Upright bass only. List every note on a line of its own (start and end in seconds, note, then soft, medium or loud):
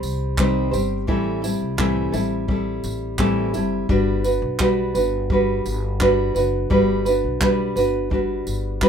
0.03 0.69 C2 medium
0.73 1.05 G1 medium
1.08 1.57 A1 medium
1.61 2.10 C2 medium
2.14 2.80 A1 medium
2.84 3.50 A1 medium
3.54 3.87 F#1 medium
3.89 4.38 G1 medium
4.42 4.91 B1 medium
4.95 5.61 G1 loud
5.66 6.32 G1 medium
6.36 6.68 F#1 medium
6.71 7.19 G1 loud
7.24 7.72 B1 medium
7.76 8.42 G1 medium
8.47 8.89 G1 medium